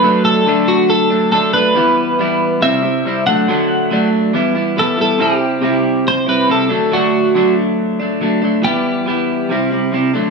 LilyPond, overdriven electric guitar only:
\new Staff \with { instrumentName = "Overdriven electric guitar" } { \time 4/4 \key d \mixolydian \tempo 4 = 139 <d fis a d'>4 <d fis a d'>4. <fis a d'>8 <d fis a d'>8 <fis a d'>8 | <e g b e'>4 <e g b e'>4 <c g c' e'>8 <g c' e'>8 <c g c' e'>8 <d fis a d'>8 | <d fis a d'>4 <d fis a d'>4 <e g b e'>8 <g b e'>8 <e g b e'>8 <g b e'>8 | <c g c' e'>4 <c g c' e'>4. <g c' e'>8 <c g c' e'>8 <d fis a d'>8 |
<d fis a d'>4 <d fis a d'>4. <fis a d'>8 <d fis a d'>8 <fis a d'>8 | <e g b e'>4 <e g b e'>4 <c g c' e'>8 <g c' e'>8 <c g c' e'>8 <d fis a d'>8 | }